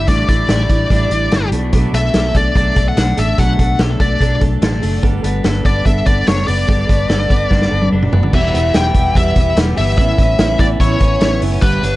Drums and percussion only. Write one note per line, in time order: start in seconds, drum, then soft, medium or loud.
0.08 kick loud
0.08 closed hi-hat medium
0.29 kick medium
0.29 closed hi-hat medium
0.49 snare medium
0.49 closed hi-hat medium
0.69 kick medium
0.69 closed hi-hat medium
0.90 kick medium
0.90 closed hi-hat medium
1.11 closed hi-hat medium
1.32 snare medium
1.32 closed hi-hat medium
1.52 closed hi-hat medium
1.73 kick loud
1.73 closed hi-hat medium
1.94 closed hi-hat medium
2.14 snare medium
2.14 closed hi-hat medium
2.35 kick medium
2.35 closed hi-hat medium
2.56 kick medium
2.56 closed hi-hat medium
2.76 kick medium
2.76 closed hi-hat medium
2.97 snare medium
2.97 closed hi-hat medium
3.17 closed hi-hat medium
3.38 kick medium
3.38 closed hi-hat medium
3.59 kick medium
3.59 closed hi-hat medium
3.79 snare medium
3.79 closed hi-hat medium
4.00 kick medium
4.00 closed hi-hat medium
4.21 kick medium
4.21 closed hi-hat medium
4.41 kick medium
4.41 closed hi-hat medium
4.62 snare loud
4.62 closed hi-hat medium
4.83 open hi-hat medium
5.03 kick medium
5.03 closed hi-hat medium
5.24 closed hi-hat medium
5.44 snare medium
5.44 closed hi-hat medium
5.65 kick medium
5.65 closed hi-hat medium
5.86 kick medium
5.86 closed hi-hat medium
6.06 kick medium
6.06 closed hi-hat medium
6.27 snare medium
6.27 closed hi-hat medium
6.48 open hi-hat medium
6.69 kick loud
6.69 closed hi-hat medium
6.89 kick medium
6.89 closed hi-hat medium
7.10 snare medium
7.10 closed hi-hat medium
7.30 kick medium
7.30 closed hi-hat medium
7.51 kick medium
7.51 snare soft
7.62 snare soft
7.82 high tom medium
8.03 mid tom medium
8.13 floor tom medium
8.23 floor tom medium
8.33 kick medium
8.33 crash medium
8.55 closed hi-hat medium
8.74 snare medium
8.74 closed hi-hat medium
8.95 kick medium
8.95 closed hi-hat medium
9.15 kick medium
9.15 closed hi-hat medium
9.36 kick medium
9.36 closed hi-hat medium
9.57 snare medium
9.57 closed hi-hat medium
9.77 open hi-hat medium
9.98 kick loud
9.98 closed hi-hat medium
10.18 kick medium
10.18 closed hi-hat medium
10.39 snare medium
10.39 closed hi-hat medium
10.59 kick medium
10.59 closed hi-hat medium
10.80 kick medium
10.80 closed hi-hat medium
11.01 kick medium
11.01 closed hi-hat medium
11.21 snare medium
11.21 closed hi-hat medium
11.42 open hi-hat medium
11.62 kick loud
11.62 closed hi-hat loud
11.83 closed hi-hat medium